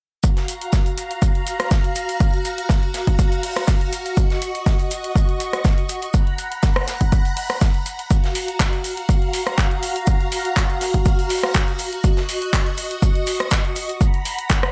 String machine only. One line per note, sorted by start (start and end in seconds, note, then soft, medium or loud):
0.24 6.10 F#4 medium
0.24 4.13 F5 medium
0.24 4.13 A#5 medium
4.17 6.12 D#5 medium
4.17 6.12 C#6 medium
6.14 8.09 F#5 medium
6.14 8.09 A#5 medium
6.14 8.09 B5 medium
8.11 13.97 F#4 medium
8.11 12.00 F5 medium
8.11 12.00 A#5 medium
12.04 13.99 D#5 medium
12.04 13.99 C#6 medium
14.01 14.72 F#5 medium
14.01 14.72 A#5 medium
14.01 14.72 B5 medium